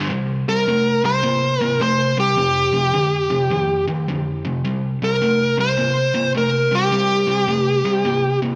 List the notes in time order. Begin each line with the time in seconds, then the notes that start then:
0.10 C3 G3
0.48 C3 G3 A#4
0.68 C3 A3
1.04 C3 G3 C5
1.23 C3 A#3
1.61 C3 A#3 A#4
1.80 C3 A3 C5
2.17 C3 G3 G4
2.36 F2 C3
2.73 F2 C3
2.94 F2 D3
3.30 F2 C3
3.51 F2 D#3
3.88 F2 D#3
4.08 F2 D3
4.45 F2 C3
4.65 C3 G3
5.02 C3 G3 A#4
5.22 C3 A3
5.57 C3 G3 C5
5.77 C3 A#3
6.14 C3 A#3
6.35 C3 A3 A#4
6.71 C3 G3 G4
6.92 C3 G3
7.27 C3 G3
7.48 C3 A3
7.85 C3 G3
8.05 C3 A#3
8.42 C3 A#3